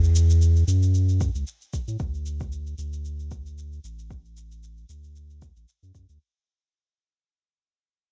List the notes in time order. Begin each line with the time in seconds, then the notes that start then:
Already playing: E2
0.04 shaker
0.15 shaker
0.30 shaker
0.42 shaker
0.56 shaker
0.68 F#2, shaker
0.83 shaker
0.94 shaker
1.09 shaker
1.21 kick, shaker
1.35 C#2, shaker
1.47 shaker
1.62 shaker
1.73 kick, shaker
1.88 A2, shaker
2.00 D2, kick, shaker
2.14 shaker
2.26 shaker
2.40 kick, shaker
2.52 shaker
2.67 shaker
2.78 D2, shaker
2.93 shaker
3.05 shaker
3.20 shaker
3.31 kick, shaker
3.46 shaker
3.58 shaker
3.73 shaker
3.84 A1, shaker
3.99 shaker
4.11 kick, shaker
4.25 shaker
4.37 shaker
4.51 shaker
4.63 shaker
4.78 shaker
4.89 D2, shaker
5.04 shaker
5.16 shaker
5.30 shaker
5.42 kick, shaker
5.56 A1, shaker
5.68 shaker
5.83 F#2, shaker
5.95 F#2, kick, shaker
6.09 D2, shaker